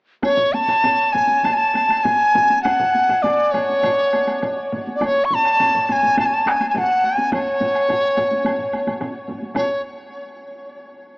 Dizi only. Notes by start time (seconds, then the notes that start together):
0.24 C#5
0.53 A5
1.13 G#5
1.44 A5
1.53 G#5
1.57 A5
2.03 G#5
2.63 F#5
3.22 D5
3.52 C#5
4.95 D5
5.05 C#5
5.25 C#6
5.34 A5
5.92 G#5
6.20 A5
6.26 G#5
6.34 A5
6.41 A5
6.49 G#5
6.70 G#5
6.78 F#5
7.06 G#5
7.34 C#5
9.56 C#5